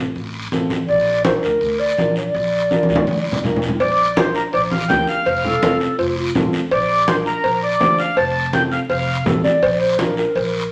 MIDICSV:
0, 0, Header, 1, 6, 480
1, 0, Start_track
1, 0, Key_signature, -2, "major"
1, 0, Tempo, 364299
1, 1170, Time_signature, 4, 2, 24, 8
1, 14122, End_track
2, 0, Start_track
2, 0, Title_t, "Accordion"
2, 0, Program_c, 0, 21
2, 5015, Note_on_c, 0, 74, 82
2, 5502, Note_on_c, 0, 72, 80
2, 5507, Note_off_c, 0, 74, 0
2, 5720, Note_off_c, 0, 72, 0
2, 5737, Note_on_c, 0, 70, 76
2, 5844, Note_off_c, 0, 70, 0
2, 5975, Note_on_c, 0, 74, 83
2, 6082, Note_off_c, 0, 74, 0
2, 6210, Note_on_c, 0, 77, 82
2, 6444, Note_on_c, 0, 79, 96
2, 6457, Note_off_c, 0, 77, 0
2, 6670, Note_off_c, 0, 79, 0
2, 6703, Note_on_c, 0, 77, 98
2, 7603, Note_off_c, 0, 77, 0
2, 8854, Note_on_c, 0, 74, 85
2, 9324, Note_on_c, 0, 72, 75
2, 9345, Note_off_c, 0, 74, 0
2, 9433, Note_off_c, 0, 72, 0
2, 9566, Note_on_c, 0, 70, 87
2, 10013, Note_off_c, 0, 70, 0
2, 10055, Note_on_c, 0, 74, 86
2, 10533, Note_on_c, 0, 77, 101
2, 10545, Note_off_c, 0, 74, 0
2, 10753, Note_off_c, 0, 77, 0
2, 10771, Note_on_c, 0, 81, 103
2, 11216, Note_off_c, 0, 81, 0
2, 11249, Note_on_c, 0, 79, 85
2, 11357, Note_off_c, 0, 79, 0
2, 11490, Note_on_c, 0, 77, 89
2, 11597, Note_off_c, 0, 77, 0
2, 11726, Note_on_c, 0, 77, 81
2, 12173, Note_off_c, 0, 77, 0
2, 14122, End_track
3, 0, Start_track
3, 0, Title_t, "Clarinet"
3, 0, Program_c, 1, 71
3, 1167, Note_on_c, 1, 74, 104
3, 1615, Note_off_c, 1, 74, 0
3, 1646, Note_on_c, 1, 72, 79
3, 1755, Note_off_c, 1, 72, 0
3, 1884, Note_on_c, 1, 70, 93
3, 2365, Note_on_c, 1, 74, 96
3, 2385, Note_off_c, 1, 70, 0
3, 2848, Note_off_c, 1, 74, 0
3, 2858, Note_on_c, 1, 74, 89
3, 4722, Note_off_c, 1, 74, 0
3, 7169, Note_on_c, 1, 69, 114
3, 7839, Note_off_c, 1, 69, 0
3, 7881, Note_on_c, 1, 65, 81
3, 8108, Note_off_c, 1, 65, 0
3, 8128, Note_on_c, 1, 65, 73
3, 8352, Note_off_c, 1, 65, 0
3, 8367, Note_on_c, 1, 65, 68
3, 8702, Note_off_c, 1, 65, 0
3, 12200, Note_on_c, 1, 69, 87
3, 12426, Note_off_c, 1, 69, 0
3, 12438, Note_on_c, 1, 74, 99
3, 12888, Note_off_c, 1, 74, 0
3, 12920, Note_on_c, 1, 72, 92
3, 13155, Note_on_c, 1, 70, 83
3, 13175, Note_off_c, 1, 72, 0
3, 13392, Note_off_c, 1, 70, 0
3, 13399, Note_on_c, 1, 70, 79
3, 14122, Note_off_c, 1, 70, 0
3, 14122, End_track
4, 0, Start_track
4, 0, Title_t, "Upright piano"
4, 0, Program_c, 2, 0
4, 691, Note_on_c, 2, 60, 83
4, 695, Note_on_c, 2, 65, 68
4, 696, Note_on_c, 2, 69, 90
4, 1026, Note_off_c, 2, 60, 0
4, 1028, Note_off_c, 2, 65, 0
4, 1029, Note_off_c, 2, 69, 0
4, 1643, Note_on_c, 2, 62, 73
4, 1644, Note_on_c, 2, 65, 67
4, 1653, Note_on_c, 2, 70, 80
4, 1983, Note_off_c, 2, 62, 0
4, 1984, Note_off_c, 2, 65, 0
4, 1988, Note_off_c, 2, 70, 0
4, 2605, Note_on_c, 2, 62, 65
4, 2610, Note_on_c, 2, 65, 61
4, 2619, Note_on_c, 2, 70, 76
4, 2944, Note_off_c, 2, 62, 0
4, 2947, Note_off_c, 2, 65, 0
4, 2951, Note_off_c, 2, 70, 0
4, 3561, Note_on_c, 2, 62, 83
4, 3568, Note_on_c, 2, 65, 75
4, 3573, Note_on_c, 2, 70, 86
4, 3902, Note_off_c, 2, 62, 0
4, 3906, Note_off_c, 2, 65, 0
4, 3908, Note_off_c, 2, 70, 0
4, 4526, Note_on_c, 2, 62, 78
4, 4530, Note_on_c, 2, 65, 69
4, 4535, Note_on_c, 2, 70, 85
4, 4865, Note_off_c, 2, 62, 0
4, 4867, Note_off_c, 2, 65, 0
4, 4869, Note_off_c, 2, 70, 0
4, 5490, Note_on_c, 2, 62, 77
4, 5493, Note_on_c, 2, 65, 68
4, 5498, Note_on_c, 2, 70, 73
4, 5826, Note_off_c, 2, 62, 0
4, 5828, Note_off_c, 2, 65, 0
4, 5831, Note_off_c, 2, 70, 0
4, 6446, Note_on_c, 2, 62, 68
4, 6450, Note_on_c, 2, 65, 62
4, 6455, Note_on_c, 2, 70, 79
4, 6784, Note_off_c, 2, 62, 0
4, 6786, Note_off_c, 2, 65, 0
4, 6789, Note_off_c, 2, 70, 0
4, 7408, Note_on_c, 2, 60, 86
4, 7408, Note_on_c, 2, 65, 76
4, 7415, Note_on_c, 2, 69, 92
4, 7745, Note_off_c, 2, 60, 0
4, 7745, Note_off_c, 2, 65, 0
4, 7748, Note_off_c, 2, 69, 0
4, 8363, Note_on_c, 2, 60, 82
4, 8370, Note_on_c, 2, 65, 75
4, 8373, Note_on_c, 2, 69, 96
4, 8702, Note_off_c, 2, 60, 0
4, 8705, Note_off_c, 2, 65, 0
4, 8707, Note_off_c, 2, 69, 0
4, 9322, Note_on_c, 2, 62, 74
4, 9326, Note_on_c, 2, 65, 70
4, 9332, Note_on_c, 2, 70, 84
4, 9661, Note_off_c, 2, 62, 0
4, 9663, Note_off_c, 2, 65, 0
4, 9666, Note_off_c, 2, 70, 0
4, 10280, Note_on_c, 2, 62, 72
4, 10287, Note_on_c, 2, 65, 63
4, 10291, Note_on_c, 2, 72, 76
4, 10620, Note_off_c, 2, 62, 0
4, 10623, Note_off_c, 2, 65, 0
4, 10625, Note_off_c, 2, 72, 0
4, 11241, Note_on_c, 2, 60, 73
4, 11247, Note_on_c, 2, 65, 64
4, 11254, Note_on_c, 2, 69, 84
4, 11580, Note_off_c, 2, 60, 0
4, 11583, Note_off_c, 2, 65, 0
4, 11586, Note_off_c, 2, 69, 0
4, 12190, Note_on_c, 2, 60, 65
4, 12196, Note_on_c, 2, 65, 64
4, 12200, Note_on_c, 2, 69, 75
4, 12534, Note_off_c, 2, 60, 0
4, 12538, Note_off_c, 2, 65, 0
4, 12539, Note_off_c, 2, 69, 0
4, 13152, Note_on_c, 2, 62, 84
4, 13160, Note_on_c, 2, 65, 78
4, 13162, Note_on_c, 2, 70, 98
4, 13496, Note_off_c, 2, 62, 0
4, 13500, Note_off_c, 2, 65, 0
4, 13501, Note_off_c, 2, 70, 0
4, 14122, End_track
5, 0, Start_track
5, 0, Title_t, "Upright bass"
5, 0, Program_c, 3, 32
5, 0, Note_on_c, 3, 33, 91
5, 160, Note_off_c, 3, 33, 0
5, 206, Note_on_c, 3, 33, 81
5, 592, Note_off_c, 3, 33, 0
5, 689, Note_on_c, 3, 33, 80
5, 1073, Note_off_c, 3, 33, 0
5, 1166, Note_on_c, 3, 34, 91
5, 1744, Note_off_c, 3, 34, 0
5, 1891, Note_on_c, 3, 38, 89
5, 2083, Note_off_c, 3, 38, 0
5, 2130, Note_on_c, 3, 38, 78
5, 2514, Note_off_c, 3, 38, 0
5, 2613, Note_on_c, 3, 34, 79
5, 2996, Note_off_c, 3, 34, 0
5, 3090, Note_on_c, 3, 34, 97
5, 3666, Note_off_c, 3, 34, 0
5, 3812, Note_on_c, 3, 38, 86
5, 4004, Note_off_c, 3, 38, 0
5, 4050, Note_on_c, 3, 38, 80
5, 4434, Note_off_c, 3, 38, 0
5, 4533, Note_on_c, 3, 34, 84
5, 4916, Note_off_c, 3, 34, 0
5, 5016, Note_on_c, 3, 34, 84
5, 5781, Note_off_c, 3, 34, 0
5, 5978, Note_on_c, 3, 34, 87
5, 6359, Note_off_c, 3, 34, 0
5, 6454, Note_on_c, 3, 38, 82
5, 6644, Note_off_c, 3, 38, 0
5, 6934, Note_on_c, 3, 29, 91
5, 7700, Note_off_c, 3, 29, 0
5, 7892, Note_on_c, 3, 29, 81
5, 8275, Note_off_c, 3, 29, 0
5, 8370, Note_on_c, 3, 33, 82
5, 8562, Note_off_c, 3, 33, 0
5, 8848, Note_on_c, 3, 34, 89
5, 9616, Note_off_c, 3, 34, 0
5, 9809, Note_on_c, 3, 34, 86
5, 10193, Note_off_c, 3, 34, 0
5, 10288, Note_on_c, 3, 38, 77
5, 10480, Note_off_c, 3, 38, 0
5, 10763, Note_on_c, 3, 29, 91
5, 11533, Note_off_c, 3, 29, 0
5, 11718, Note_on_c, 3, 29, 87
5, 12106, Note_off_c, 3, 29, 0
5, 12200, Note_on_c, 3, 33, 90
5, 12395, Note_off_c, 3, 33, 0
5, 12682, Note_on_c, 3, 34, 93
5, 13452, Note_off_c, 3, 34, 0
5, 13646, Note_on_c, 3, 34, 90
5, 14030, Note_off_c, 3, 34, 0
5, 14122, End_track
6, 0, Start_track
6, 0, Title_t, "Drums"
6, 207, Note_on_c, 9, 63, 31
6, 208, Note_on_c, 9, 74, 62
6, 338, Note_off_c, 9, 63, 0
6, 340, Note_off_c, 9, 74, 0
6, 685, Note_on_c, 9, 63, 74
6, 686, Note_on_c, 9, 73, 67
6, 816, Note_off_c, 9, 63, 0
6, 818, Note_off_c, 9, 73, 0
6, 924, Note_on_c, 9, 73, 71
6, 926, Note_on_c, 9, 63, 60
6, 1056, Note_off_c, 9, 73, 0
6, 1058, Note_off_c, 9, 63, 0
6, 1163, Note_on_c, 9, 63, 32
6, 1167, Note_on_c, 9, 74, 62
6, 1295, Note_off_c, 9, 63, 0
6, 1298, Note_off_c, 9, 74, 0
6, 1642, Note_on_c, 9, 63, 87
6, 1646, Note_on_c, 9, 73, 64
6, 1774, Note_off_c, 9, 63, 0
6, 1777, Note_off_c, 9, 73, 0
6, 1883, Note_on_c, 9, 73, 62
6, 2015, Note_off_c, 9, 73, 0
6, 2120, Note_on_c, 9, 74, 70
6, 2131, Note_on_c, 9, 63, 32
6, 2252, Note_off_c, 9, 74, 0
6, 2263, Note_off_c, 9, 63, 0
6, 2601, Note_on_c, 9, 73, 62
6, 2611, Note_on_c, 9, 63, 77
6, 2733, Note_off_c, 9, 73, 0
6, 2743, Note_off_c, 9, 63, 0
6, 2843, Note_on_c, 9, 73, 70
6, 2975, Note_off_c, 9, 73, 0
6, 3089, Note_on_c, 9, 74, 64
6, 3091, Note_on_c, 9, 63, 28
6, 3220, Note_off_c, 9, 74, 0
6, 3222, Note_off_c, 9, 63, 0
6, 3569, Note_on_c, 9, 73, 67
6, 3570, Note_on_c, 9, 63, 65
6, 3701, Note_off_c, 9, 73, 0
6, 3702, Note_off_c, 9, 63, 0
6, 3729, Note_on_c, 9, 63, 76
6, 3808, Note_on_c, 9, 73, 63
6, 3861, Note_off_c, 9, 63, 0
6, 3895, Note_on_c, 9, 64, 80
6, 3939, Note_off_c, 9, 73, 0
6, 4027, Note_off_c, 9, 64, 0
6, 4046, Note_on_c, 9, 74, 70
6, 4054, Note_on_c, 9, 63, 74
6, 4178, Note_off_c, 9, 74, 0
6, 4186, Note_off_c, 9, 63, 0
6, 4377, Note_on_c, 9, 64, 81
6, 4508, Note_off_c, 9, 64, 0
6, 4531, Note_on_c, 9, 73, 60
6, 4536, Note_on_c, 9, 64, 70
6, 4663, Note_off_c, 9, 73, 0
6, 4668, Note_off_c, 9, 64, 0
6, 4695, Note_on_c, 9, 64, 74
6, 4769, Note_on_c, 9, 73, 68
6, 4827, Note_off_c, 9, 64, 0
6, 4854, Note_on_c, 9, 64, 73
6, 4901, Note_off_c, 9, 73, 0
6, 4986, Note_off_c, 9, 64, 0
6, 5008, Note_on_c, 9, 56, 89
6, 5008, Note_on_c, 9, 74, 62
6, 5013, Note_on_c, 9, 63, 31
6, 5140, Note_off_c, 9, 56, 0
6, 5140, Note_off_c, 9, 74, 0
6, 5145, Note_off_c, 9, 63, 0
6, 5488, Note_on_c, 9, 73, 66
6, 5493, Note_on_c, 9, 63, 99
6, 5619, Note_off_c, 9, 73, 0
6, 5625, Note_off_c, 9, 63, 0
6, 5728, Note_on_c, 9, 73, 69
6, 5860, Note_off_c, 9, 73, 0
6, 5967, Note_on_c, 9, 74, 71
6, 5975, Note_on_c, 9, 56, 73
6, 5977, Note_on_c, 9, 63, 31
6, 6099, Note_off_c, 9, 74, 0
6, 6106, Note_off_c, 9, 56, 0
6, 6109, Note_off_c, 9, 63, 0
6, 6212, Note_on_c, 9, 63, 69
6, 6344, Note_off_c, 9, 63, 0
6, 6445, Note_on_c, 9, 73, 69
6, 6453, Note_on_c, 9, 63, 82
6, 6457, Note_on_c, 9, 66, 66
6, 6576, Note_off_c, 9, 73, 0
6, 6585, Note_off_c, 9, 63, 0
6, 6589, Note_off_c, 9, 66, 0
6, 6687, Note_on_c, 9, 73, 71
6, 6818, Note_off_c, 9, 73, 0
6, 6922, Note_on_c, 9, 74, 63
6, 6934, Note_on_c, 9, 56, 89
6, 6934, Note_on_c, 9, 63, 31
6, 7054, Note_off_c, 9, 74, 0
6, 7065, Note_off_c, 9, 63, 0
6, 7066, Note_off_c, 9, 56, 0
6, 7174, Note_on_c, 9, 64, 67
6, 7306, Note_off_c, 9, 64, 0
6, 7409, Note_on_c, 9, 73, 66
6, 7413, Note_on_c, 9, 63, 93
6, 7540, Note_off_c, 9, 73, 0
6, 7544, Note_off_c, 9, 63, 0
6, 7646, Note_on_c, 9, 73, 65
6, 7778, Note_off_c, 9, 73, 0
6, 7889, Note_on_c, 9, 56, 75
6, 7890, Note_on_c, 9, 74, 76
6, 7897, Note_on_c, 9, 63, 33
6, 8021, Note_off_c, 9, 56, 0
6, 8021, Note_off_c, 9, 74, 0
6, 8029, Note_off_c, 9, 63, 0
6, 8368, Note_on_c, 9, 73, 70
6, 8373, Note_on_c, 9, 63, 79
6, 8373, Note_on_c, 9, 64, 78
6, 8499, Note_off_c, 9, 73, 0
6, 8505, Note_off_c, 9, 63, 0
6, 8505, Note_off_c, 9, 64, 0
6, 8606, Note_on_c, 9, 73, 80
6, 8737, Note_off_c, 9, 73, 0
6, 8846, Note_on_c, 9, 74, 68
6, 8847, Note_on_c, 9, 56, 89
6, 8850, Note_on_c, 9, 63, 31
6, 8978, Note_off_c, 9, 74, 0
6, 8979, Note_off_c, 9, 56, 0
6, 8982, Note_off_c, 9, 63, 0
6, 9325, Note_on_c, 9, 63, 90
6, 9325, Note_on_c, 9, 73, 67
6, 9457, Note_off_c, 9, 63, 0
6, 9457, Note_off_c, 9, 73, 0
6, 9567, Note_on_c, 9, 73, 67
6, 9699, Note_off_c, 9, 73, 0
6, 9800, Note_on_c, 9, 56, 75
6, 9801, Note_on_c, 9, 74, 65
6, 9807, Note_on_c, 9, 63, 34
6, 9932, Note_off_c, 9, 56, 0
6, 9932, Note_off_c, 9, 74, 0
6, 9939, Note_off_c, 9, 63, 0
6, 10279, Note_on_c, 9, 73, 68
6, 10282, Note_on_c, 9, 66, 70
6, 10286, Note_on_c, 9, 63, 82
6, 10410, Note_off_c, 9, 73, 0
6, 10414, Note_off_c, 9, 66, 0
6, 10417, Note_off_c, 9, 63, 0
6, 10521, Note_on_c, 9, 73, 74
6, 10653, Note_off_c, 9, 73, 0
6, 10763, Note_on_c, 9, 74, 65
6, 10764, Note_on_c, 9, 56, 95
6, 10768, Note_on_c, 9, 63, 31
6, 10895, Note_off_c, 9, 56, 0
6, 10895, Note_off_c, 9, 74, 0
6, 10900, Note_off_c, 9, 63, 0
6, 11240, Note_on_c, 9, 73, 64
6, 11243, Note_on_c, 9, 63, 87
6, 11372, Note_off_c, 9, 73, 0
6, 11374, Note_off_c, 9, 63, 0
6, 11483, Note_on_c, 9, 73, 65
6, 11615, Note_off_c, 9, 73, 0
6, 11720, Note_on_c, 9, 74, 72
6, 11721, Note_on_c, 9, 56, 74
6, 11723, Note_on_c, 9, 63, 35
6, 11852, Note_off_c, 9, 74, 0
6, 11853, Note_off_c, 9, 56, 0
6, 11855, Note_off_c, 9, 63, 0
6, 12201, Note_on_c, 9, 66, 70
6, 12203, Note_on_c, 9, 63, 79
6, 12203, Note_on_c, 9, 64, 78
6, 12206, Note_on_c, 9, 73, 71
6, 12333, Note_off_c, 9, 66, 0
6, 12335, Note_off_c, 9, 63, 0
6, 12335, Note_off_c, 9, 64, 0
6, 12337, Note_off_c, 9, 73, 0
6, 12442, Note_on_c, 9, 63, 64
6, 12445, Note_on_c, 9, 73, 73
6, 12573, Note_off_c, 9, 63, 0
6, 12577, Note_off_c, 9, 73, 0
6, 12681, Note_on_c, 9, 63, 29
6, 12682, Note_on_c, 9, 74, 72
6, 12684, Note_on_c, 9, 56, 99
6, 12813, Note_off_c, 9, 63, 0
6, 12814, Note_off_c, 9, 74, 0
6, 12816, Note_off_c, 9, 56, 0
6, 13160, Note_on_c, 9, 73, 66
6, 13161, Note_on_c, 9, 63, 89
6, 13292, Note_off_c, 9, 63, 0
6, 13292, Note_off_c, 9, 73, 0
6, 13403, Note_on_c, 9, 73, 67
6, 13535, Note_off_c, 9, 73, 0
6, 13639, Note_on_c, 9, 63, 34
6, 13643, Note_on_c, 9, 74, 71
6, 13648, Note_on_c, 9, 56, 74
6, 13771, Note_off_c, 9, 63, 0
6, 13775, Note_off_c, 9, 74, 0
6, 13779, Note_off_c, 9, 56, 0
6, 14122, End_track
0, 0, End_of_file